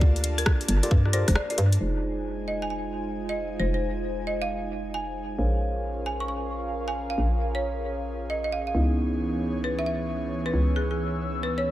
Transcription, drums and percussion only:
0, 0, Header, 1, 2, 480
1, 0, Start_track
1, 0, Key_signature, -4, "minor"
1, 0, Tempo, 447761
1, 16, Time_signature, 4, 2, 24, 8
1, 12554, End_track
2, 0, Start_track
2, 0, Title_t, "Drums"
2, 15, Note_on_c, 9, 36, 116
2, 122, Note_off_c, 9, 36, 0
2, 172, Note_on_c, 9, 42, 37
2, 254, Note_off_c, 9, 42, 0
2, 254, Note_on_c, 9, 42, 114
2, 362, Note_off_c, 9, 42, 0
2, 410, Note_on_c, 9, 42, 68
2, 494, Note_on_c, 9, 37, 118
2, 495, Note_on_c, 9, 36, 117
2, 518, Note_off_c, 9, 42, 0
2, 601, Note_off_c, 9, 37, 0
2, 602, Note_off_c, 9, 36, 0
2, 652, Note_on_c, 9, 42, 40
2, 734, Note_off_c, 9, 42, 0
2, 734, Note_on_c, 9, 42, 115
2, 841, Note_off_c, 9, 42, 0
2, 891, Note_on_c, 9, 42, 71
2, 976, Note_on_c, 9, 36, 113
2, 998, Note_off_c, 9, 42, 0
2, 1083, Note_off_c, 9, 36, 0
2, 1131, Note_on_c, 9, 37, 32
2, 1214, Note_on_c, 9, 42, 110
2, 1238, Note_off_c, 9, 37, 0
2, 1321, Note_off_c, 9, 42, 0
2, 1370, Note_on_c, 9, 37, 57
2, 1370, Note_on_c, 9, 42, 67
2, 1372, Note_on_c, 9, 36, 60
2, 1453, Note_off_c, 9, 37, 0
2, 1453, Note_on_c, 9, 37, 114
2, 1478, Note_off_c, 9, 42, 0
2, 1480, Note_off_c, 9, 36, 0
2, 1560, Note_off_c, 9, 37, 0
2, 1609, Note_on_c, 9, 42, 55
2, 1692, Note_off_c, 9, 42, 0
2, 1692, Note_on_c, 9, 42, 112
2, 1799, Note_off_c, 9, 42, 0
2, 1849, Note_on_c, 9, 42, 69
2, 1956, Note_off_c, 9, 42, 0
2, 12554, End_track
0, 0, End_of_file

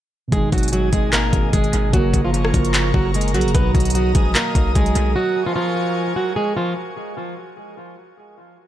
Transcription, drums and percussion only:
0, 0, Header, 1, 2, 480
1, 0, Start_track
1, 0, Tempo, 402685
1, 386, Time_signature, 4, 2, 24, 8
1, 10339, End_track
2, 0, Start_track
2, 0, Title_t, "Drums"
2, 385, Note_on_c, 9, 36, 123
2, 385, Note_on_c, 9, 42, 77
2, 504, Note_off_c, 9, 42, 0
2, 505, Note_off_c, 9, 36, 0
2, 624, Note_on_c, 9, 36, 88
2, 624, Note_on_c, 9, 42, 49
2, 688, Note_off_c, 9, 42, 0
2, 688, Note_on_c, 9, 42, 62
2, 744, Note_off_c, 9, 36, 0
2, 751, Note_off_c, 9, 42, 0
2, 751, Note_on_c, 9, 42, 69
2, 809, Note_off_c, 9, 42, 0
2, 809, Note_on_c, 9, 42, 78
2, 867, Note_off_c, 9, 42, 0
2, 867, Note_on_c, 9, 42, 81
2, 986, Note_off_c, 9, 42, 0
2, 1104, Note_on_c, 9, 42, 76
2, 1106, Note_on_c, 9, 36, 92
2, 1223, Note_off_c, 9, 42, 0
2, 1225, Note_off_c, 9, 36, 0
2, 1345, Note_on_c, 9, 39, 113
2, 1345, Note_on_c, 9, 42, 82
2, 1464, Note_off_c, 9, 39, 0
2, 1464, Note_off_c, 9, 42, 0
2, 1584, Note_on_c, 9, 36, 97
2, 1584, Note_on_c, 9, 42, 71
2, 1703, Note_off_c, 9, 42, 0
2, 1704, Note_off_c, 9, 36, 0
2, 1825, Note_on_c, 9, 42, 77
2, 1827, Note_on_c, 9, 36, 98
2, 1945, Note_off_c, 9, 42, 0
2, 1946, Note_off_c, 9, 36, 0
2, 1953, Note_on_c, 9, 42, 42
2, 2063, Note_off_c, 9, 42, 0
2, 2063, Note_on_c, 9, 42, 86
2, 2182, Note_off_c, 9, 42, 0
2, 2306, Note_on_c, 9, 36, 118
2, 2306, Note_on_c, 9, 42, 75
2, 2425, Note_off_c, 9, 36, 0
2, 2425, Note_off_c, 9, 42, 0
2, 2545, Note_on_c, 9, 36, 89
2, 2548, Note_on_c, 9, 42, 81
2, 2665, Note_off_c, 9, 36, 0
2, 2667, Note_off_c, 9, 42, 0
2, 2789, Note_on_c, 9, 42, 83
2, 2908, Note_off_c, 9, 42, 0
2, 2915, Note_on_c, 9, 37, 98
2, 3025, Note_on_c, 9, 46, 60
2, 3026, Note_on_c, 9, 42, 63
2, 3027, Note_on_c, 9, 36, 91
2, 3034, Note_off_c, 9, 37, 0
2, 3144, Note_off_c, 9, 46, 0
2, 3146, Note_off_c, 9, 36, 0
2, 3146, Note_off_c, 9, 42, 0
2, 3154, Note_on_c, 9, 42, 62
2, 3267, Note_off_c, 9, 42, 0
2, 3267, Note_on_c, 9, 39, 114
2, 3267, Note_on_c, 9, 42, 82
2, 3386, Note_off_c, 9, 39, 0
2, 3386, Note_off_c, 9, 42, 0
2, 3505, Note_on_c, 9, 36, 100
2, 3625, Note_off_c, 9, 36, 0
2, 3746, Note_on_c, 9, 42, 77
2, 3827, Note_off_c, 9, 42, 0
2, 3827, Note_on_c, 9, 42, 73
2, 3907, Note_off_c, 9, 42, 0
2, 3907, Note_on_c, 9, 42, 61
2, 3985, Note_on_c, 9, 46, 59
2, 3987, Note_off_c, 9, 42, 0
2, 3987, Note_on_c, 9, 42, 56
2, 4067, Note_off_c, 9, 42, 0
2, 4067, Note_on_c, 9, 42, 51
2, 4104, Note_off_c, 9, 46, 0
2, 4147, Note_off_c, 9, 42, 0
2, 4147, Note_on_c, 9, 42, 46
2, 4226, Note_off_c, 9, 42, 0
2, 4226, Note_on_c, 9, 36, 119
2, 4226, Note_on_c, 9, 42, 76
2, 4346, Note_off_c, 9, 36, 0
2, 4346, Note_off_c, 9, 42, 0
2, 4466, Note_on_c, 9, 36, 85
2, 4466, Note_on_c, 9, 42, 51
2, 4530, Note_off_c, 9, 42, 0
2, 4530, Note_on_c, 9, 42, 60
2, 4585, Note_off_c, 9, 36, 0
2, 4594, Note_off_c, 9, 42, 0
2, 4594, Note_on_c, 9, 42, 69
2, 4650, Note_off_c, 9, 42, 0
2, 4650, Note_on_c, 9, 42, 79
2, 4708, Note_off_c, 9, 42, 0
2, 4708, Note_on_c, 9, 42, 81
2, 4827, Note_off_c, 9, 42, 0
2, 4944, Note_on_c, 9, 42, 76
2, 4947, Note_on_c, 9, 36, 93
2, 5063, Note_off_c, 9, 42, 0
2, 5066, Note_off_c, 9, 36, 0
2, 5186, Note_on_c, 9, 39, 111
2, 5186, Note_on_c, 9, 42, 79
2, 5305, Note_off_c, 9, 39, 0
2, 5305, Note_off_c, 9, 42, 0
2, 5425, Note_on_c, 9, 36, 96
2, 5425, Note_on_c, 9, 42, 72
2, 5544, Note_off_c, 9, 36, 0
2, 5544, Note_off_c, 9, 42, 0
2, 5666, Note_on_c, 9, 42, 75
2, 5668, Note_on_c, 9, 36, 96
2, 5785, Note_off_c, 9, 42, 0
2, 5787, Note_off_c, 9, 36, 0
2, 5794, Note_on_c, 9, 42, 45
2, 5905, Note_off_c, 9, 42, 0
2, 5905, Note_on_c, 9, 42, 84
2, 6024, Note_off_c, 9, 42, 0
2, 10339, End_track
0, 0, End_of_file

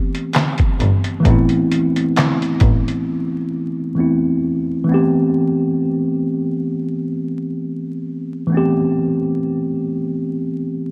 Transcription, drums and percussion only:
0, 0, Header, 1, 2, 480
1, 0, Start_track
1, 0, Key_signature, 0, "minor"
1, 0, Tempo, 909091
1, 661, Time_signature, 4, 2, 24, 8
1, 5763, End_track
2, 0, Start_track
2, 0, Title_t, "Drums"
2, 78, Note_on_c, 9, 42, 45
2, 131, Note_off_c, 9, 42, 0
2, 177, Note_on_c, 9, 42, 77
2, 188, Note_on_c, 9, 39, 89
2, 191, Note_on_c, 9, 38, 117
2, 230, Note_off_c, 9, 42, 0
2, 241, Note_off_c, 9, 39, 0
2, 244, Note_off_c, 9, 38, 0
2, 307, Note_on_c, 9, 42, 49
2, 316, Note_on_c, 9, 36, 78
2, 359, Note_off_c, 9, 42, 0
2, 369, Note_off_c, 9, 36, 0
2, 425, Note_on_c, 9, 42, 63
2, 477, Note_off_c, 9, 42, 0
2, 551, Note_on_c, 9, 42, 45
2, 604, Note_off_c, 9, 42, 0
2, 661, Note_on_c, 9, 36, 104
2, 661, Note_on_c, 9, 42, 89
2, 714, Note_off_c, 9, 36, 0
2, 714, Note_off_c, 9, 42, 0
2, 787, Note_on_c, 9, 42, 41
2, 840, Note_off_c, 9, 42, 0
2, 907, Note_on_c, 9, 42, 69
2, 960, Note_off_c, 9, 42, 0
2, 1037, Note_on_c, 9, 42, 46
2, 1090, Note_off_c, 9, 42, 0
2, 1144, Note_on_c, 9, 42, 77
2, 1152, Note_on_c, 9, 39, 85
2, 1155, Note_on_c, 9, 38, 114
2, 1197, Note_off_c, 9, 42, 0
2, 1205, Note_off_c, 9, 39, 0
2, 1208, Note_off_c, 9, 38, 0
2, 1279, Note_on_c, 9, 42, 41
2, 1332, Note_off_c, 9, 42, 0
2, 1373, Note_on_c, 9, 42, 75
2, 1379, Note_on_c, 9, 36, 94
2, 1426, Note_off_c, 9, 42, 0
2, 1431, Note_off_c, 9, 36, 0
2, 1520, Note_on_c, 9, 42, 40
2, 1573, Note_off_c, 9, 42, 0
2, 5763, End_track
0, 0, End_of_file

